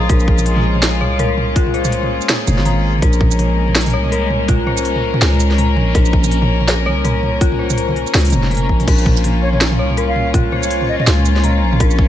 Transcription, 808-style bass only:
0.10 A#1
1.01 C2
2.48 F1
2.58 G#1
3.02 A#1
3.94 C2
5.22 C#2
5.76 A#1
5.95 A#1
6.86 C2
8.15 C#2
8.33 F1
8.69 A#1
8.88 A#1
9.79 C2
11.07 C#2
11.62 A#1
11.80 A#1

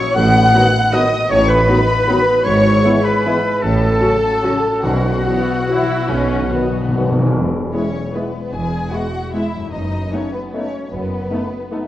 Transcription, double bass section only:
0.15 A1
1.30 A1
2.45 G#1
3.63 A1
4.83 B1
6.09 B1
7.34 E1
8.53 E1
9.73 F#1
10.92 F#1

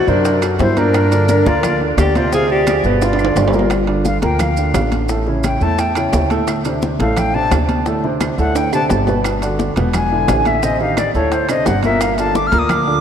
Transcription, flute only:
0.08 A#4
0.60 C5
0.78 A#4
1.47 D5
1.99 D5
2.16 D5
2.33 F5
2.50 D5
3.02 D5
4.05 F5
4.23 G5
4.40 F5
5.45 G5
5.63 A5
5.80 G5
7.01 F5
7.19 G5
7.35 A5
8.39 F#5
8.57 G5
8.74 A5
9.95 G#5
10.47 E5
10.64 D#5
10.81 F5
10.98 D5
11.15 C#5
11.33 C5
11.49 D#5
11.67 F#5
11.84 E5
12.01 F5
12.18 A5
12.36 D6
12.47 F6
12.59 D#6
12.71 D6

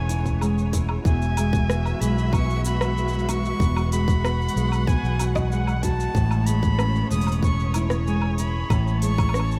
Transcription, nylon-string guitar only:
Already playing: A2 G#3 C#4
0.09 E4
0.42 G#3
0.73 E4
1.06 E2
1.38 G#3
1.70 B3
2.01 G#3
2.33 B3
2.65 F#4
2.97 G#3
3.29 F#4
3.61 E2
3.93 G#3
4.25 B3
4.56 G#3
4.88 B3
5.21 F#4
5.53 G#3
5.84 F#4
6.16 A2
6.49 G#3
6.80 C#4
7.12 G#3
7.44 C#4
7.76 E4
8.08 G#3
8.39 E4
8.72 A2
9.03 G#3
9.34 C#4

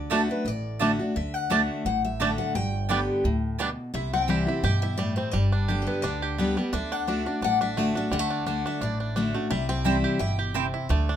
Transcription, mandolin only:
0.10 A3 F#4 D5 A5
0.79 A3 F#4 D5 A5
1.50 A3 F#4 D5 A5
2.20 A3 F#4 D5 A5
2.89 B3 G4 D5 G5
3.59 B3 G4 D5 G5
9.85 C4 E4 C5 G5
10.54 C4 E4 C5 G5

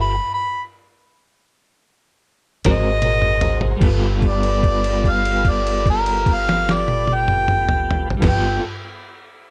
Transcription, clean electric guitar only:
2.66 G#3 C4 F#4 A#4
3.76 G3
3.83 B3
3.87 F4
3.93 A4
8.17 G3
8.23 B3
8.28 F4
8.33 A4

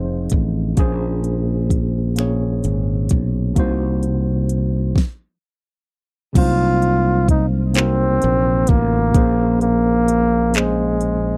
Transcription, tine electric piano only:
Already playing: F3 C4 D#4 G#4 D#5 F5
0.75 A#2 A#3 C#4
0.79 G#4 C5
2.15 A#2 A#3 C#4 G#4
2.20 C#5
3.54 C3 A#3 D#4 F#4
3.60 C5
6.33 C3 F#3 A#3 C#4
6.38 C5
6.42 D#4
7.73 C3 A#3 D#4 F#4
7.78 A#4
9.12 A#2 A#3 C#4 G#4
9.17 C5
10.52 A#2 A#3 C#4 G#4
10.57 C5

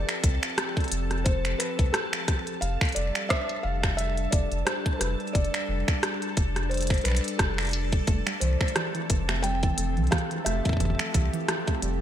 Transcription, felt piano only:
Already playing: D5
1.24 C5
1.59 B4
1.93 A4
2.61 F5
2.95 D5
3.29 E5
3.63 F5
3.97 E5
4.31 D5
4.65 C5
4.93 C5
4.99 B4
5.33 D5
6.69 C5
7.04 B4
7.38 A4
8.40 C5
9.42 G5
10.11 F5
10.45 E5

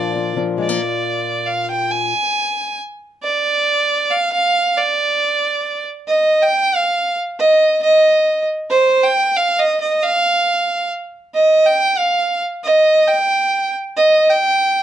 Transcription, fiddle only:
Already playing: D5
0.59 D5
1.46 F5
1.70 G5
1.91 G#5
3.23 D5
4.10 F5
4.32 F5
4.77 D5
6.08 D#5
6.42 G5
6.75 F5
7.39 D#5
7.83 D#5
8.70 C5
9.03 G5
9.36 F5
9.59 D#5
9.80 D#5
10.03 F5
11.34 D#5
11.66 G5
11.98 F5
12.64 D#5
13.07 G5
13.97 D#5
14.29 G5

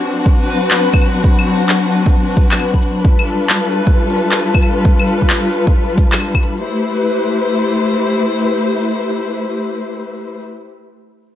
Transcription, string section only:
Already playing: F#3 C4 D4 F#4
3.04 G3 F4 A4 B4
6.65 A3 E4 G4 B4 C5

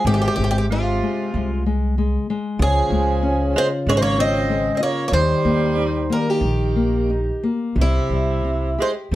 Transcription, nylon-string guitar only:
0.07 G#3
0.39 G#3
0.71 G#3
1.03 G#3
1.35 G#3
1.66 G#3
1.98 G#3
2.30 G#3
2.62 C#3
2.92 G#3
3.23 C#4
3.56 F4
3.88 C#4
4.18 F4
4.49 G#3
4.80 F4
5.13 D#3
5.45 A#3
5.77 D#4
6.10 A#3
6.41 D#3
6.76 A#3
7.10 D#4
7.43 A#3
7.78 C3
8.13 G3
8.45 C3
8.78 G4
9.12 C3

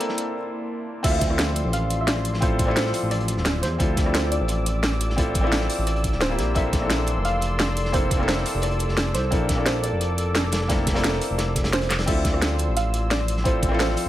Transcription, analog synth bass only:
1.04 D2
1.65 A1
3.03 A1
3.37 D1
3.63 E2
3.80 D2
4.40 A1
5.78 A1
6.13 D1
6.38 A#1
6.56 A#1
7.16 F1
8.54 F1
8.89 F1
9.15 C2
9.32 A#1
9.92 F1
11.30 F1
11.65 F1
11.73 F1
11.90 F1
12.07 D2
12.68 A1
14.06 A1

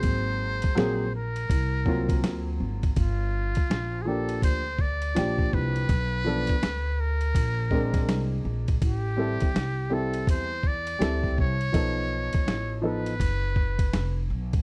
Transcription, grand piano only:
Already playing: F#3 A#3 C4 G#4
0.75 F#3 A#3 C4 G#4
1.85 F#3 A#3 C4 F4
4.05 F3 A#3 D4 G4
5.15 A#2 F3 D4 G4
6.24 F3 B3 D4 A4
7.71 G#3 C4 D4 A#4
9.17 G3 C4 E4 A4
9.90 G3 C4 E4 A4
10.99 G3 C4 E4 A4
11.72 F3 B3 D#4 A4
12.82 F3 B3 D#4 A4

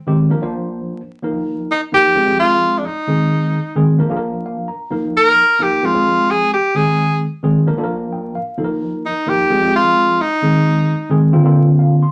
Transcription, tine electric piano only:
0.07 D#3 G#3 C4 G4
0.30 F3 A#3 D4 A#4
0.42 F3 A#3 D4 C5
1.23 F3 A#3 D#4 A#4
1.92 F3 A#3 D#4 A#4
2.15 F3 G#3 C4 G#4
2.26 F3 G#3 C4 G#4
3.07 D#3 G#3 C4 G#4
3.75 D#3 G#3 C4 G#4
3.99 F3 A#3 D4 A#4
4.10 F3 A#3 D4 G#4
4.17 A#4
4.46 F5
4.68 A#5
4.90 F3 A#3 D#4 A#4
5.59 F3 A#3 D#4 A#4
5.83 F3 G#3 C4 G#4
5.94 F3 G#3 C4 G#4
6.74 D#3 G#3 C4 G#4
7.43 D#3 G#3 C4 G#4
7.67 F3 A#3 D4 A#4
7.78 F3 A#3 D4 A4
7.84 A#4
8.12 G5
8.35 F5
8.58 F3 A#3 D#4 A4
8.64 A#4
9.26 F3 A#3 D#4 A#4
9.50 F3 G#3 C4 G#4
9.62 F3 G#3 C4 G4
9.68 G#4
10.42 D#3 G#3 C4 G#4
11.10 D#3 G#3 C4 G#4
11.33 D3 A#3 C4 F4
11.44 D3 A#3 C4 F4
11.79 F5
12.02 C6

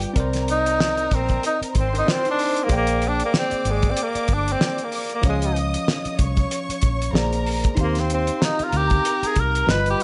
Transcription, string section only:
Already playing: G4 G5
0.16 A#4 A#5
1.75 C5 C6
2.69 D5 D6
5.23 D#5 D#6
6.18 C#5 C#6
7.14 A#4 A#5
7.78 C5 C6
8.41 A#4 A#5
9.68 B4 B5

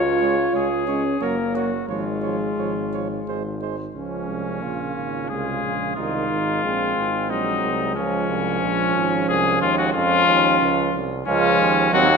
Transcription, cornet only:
Already playing: C#5
0.55 G#4
1.22 A#4
1.55 F#4
1.88 F4
3.93 C#4
5.29 G#4
5.95 F4
7.30 D#4
7.95 C#4
9.28 G#4
9.61 F4
9.78 F#4
9.93 F4
11.26 C#4
11.93 F#4

